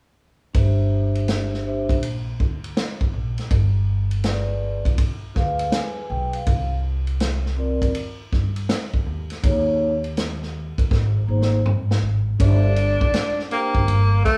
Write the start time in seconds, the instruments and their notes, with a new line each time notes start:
0.54 upright bass G1, vibraphone D4 G4 C5 E5, kick, ride
1.15 ride
1.28 snare, hi-hat pedal, ride
1.54 snare
1.64 vibraphone D4 G4 C5 E5
1.89 upright bass A#1, kick, ride
2.03 ride
2.40 upright bass D2, kick
2.64 ride
2.77 snare, hi-hat pedal, ride
3.01 kick
3.13 upright bass A#1
3.38 snare, ride
3.51 upright bass G1, kick, ride
4.11 ride
4.24 vibraphone F4 G#4 B4 D5, snare, hi-hat pedal, ride
4.85 upright bass B1, kick, ride
4.98 kick, ride
5.34 upright bass D2, vibraphone F4 G#4 B4 F5, kick, snare
5.59 ride
5.72 vibraphone G#5, snare, hi-hat pedal, ride
6.09 upright bass B1, vibraphone G5
6.33 vibraphone F5, ride
6.46 upright bass C2, kick, ride
7.07 ride
7.20 snare, hi-hat pedal, ride
7.46 snare
7.57 vibraphone C4 F4 A#4 D5
7.82 upright bass D#2, kick, ride
7.95 ride
8.32 upright bass G2, kick, snare
8.56 ride
8.69 snare, hi-hat pedal, ride
8.94 kick
9.06 upright bass D#2
9.30 snare, ride
9.42 upright bass D#2, vibraphone A#3 D#4 G#4 C#5, kick, ride
10.04 ride
10.17 snare, hi-hat pedal, ride
10.43 snare
10.78 upright bass F#2, kick, ride
10.91 upright bass G#1, kick, snare
11.28 upright bass G#1, vibraphone A#3 D#4 G#4 C5
11.42 snare
11.65 upright bass G#2, mid tom
11.91 snare
12.02 upright bass G#1
12.39 upright bass G1, vibraphone D4 G4 C5 E5, tenor saxophone D4, kick, ride
12.76 ride
13.01 upright bass A1, kick
13.14 snare, hi-hat pedal, ride
13.39 snare
13.50 tenor saxophone A#3, vibraphone D4 G4 C5 G5, ride
13.75 upright bass G1, kick
13.88 upright bass G1, ride
14.25 tenor saxophone A3, kick, snare, ride